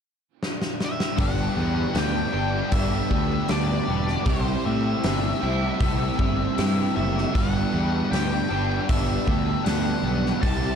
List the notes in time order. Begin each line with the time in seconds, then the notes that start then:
0.43 snare
0.62 snare
0.80 snare
0.85 E5
1.00 snare
1.16 G1 G2 D3 G3 B3 D4 G4, kick, open hi-hat
1.22 F#5
1.55 E2 G3 B3 D4 G4
1.93 D2 G3 B3 D4 G4, snare, open hi-hat
1.98 G5
2.32 G1 G2 D3 G3 B3 D4 G4
2.71 G1 G2 D3 G3 B3 D4 G4 E5, kick, open hi-hat
3.09 D2 G3 B3 D4 G4, kick
3.48 D2 G3 B3 D4 G4 D5, snare, open hi-hat
3.86 E1 G3 B3 D4 G4
4.08 snare
4.25 C2 C3 G3 C4 E4 G4 C5, kick, open hi-hat
4.64 A2 G3 C4 E4 G4 E5
5.03 G1 G3 A3 C4 E4 G4, snare, open hi-hat
5.42 C2 C3 G3 C4 E4 G4
5.81 C2 C3 G3 A3 C4 E4 G4, kick, open hi-hat
6.19 G1 G3 C4 E4 G4, kick
6.57 G2 G3 C4 E4 G4, snare, open hi-hat
6.95 F#1 A3 C4 E4 G4 E5
7.18 snare
7.34 G1 G2 D3 G3 B3 D4 G4 F#5, kick, open hi-hat
7.72 E2 G3 B3 D4 G4
8.11 D2 G3 B3 D4 G4 G5, snare, open hi-hat
8.50 G1 G2 D3 G3 B3 D4 G4
8.89 G1 G2 D3 G3 B3 D4 G4 E5, kick, open hi-hat
9.27 D2 G3 B3 D4 G4, kick
9.65 D2 G3 B3 D4 F#5, snare, open hi-hat
9.69 G4
10.03 B1 G3 B3 D4 G4
10.26 snare
10.41 C2 C3 G3 C4 E4 G4 A5, kick, open hi-hat